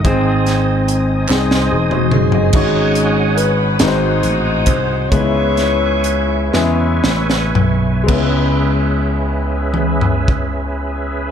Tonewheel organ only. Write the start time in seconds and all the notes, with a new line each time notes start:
Already playing: D#5 D#6
0.04 C5 G#5
2.53 C#5 F#5 G#5 D#6
3.81 C5
5.12 B4 E5 C#6
8.07 C#4 G#4 B4 E5